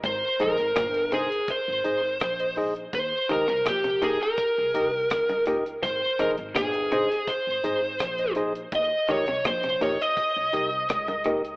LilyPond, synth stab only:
\new Staff \with { instrumentName = "Synth stab" } { \time 4/4 \key aes \major \tempo 4 = 83 r8 <ees' aes' c'' ees''>16 r8. <ees' aes' c'' ees''>16 r8. <ees' aes' c'' ees''>16 r8 <c'' ees''>16 <ees' aes' c'' ees''>16 r16 | r8 <ees' g' bes' ees''>16 r8. <ees' g' bes' ees''>16 r8. <ees' g' bes' ees''>16 r8 <bes' ees''>16 <ees' g' bes' ees''>16 r16 | r8 <ees' aes' c'' ees''>16 r8. <ees' aes' c'' ees''>16 r8. <ees' aes' c'' ees''>16 r8 <c'' ees''>16 <ees' aes' c'' ees''>16 r16 | r8 <ees' g' bes' ees''>16 r8. <ees' g' bes' ees''>16 r8. <ees' g' bes' ees''>16 r8 <bes' ees''>16 <ees' g' bes' ees''>16 r16 | }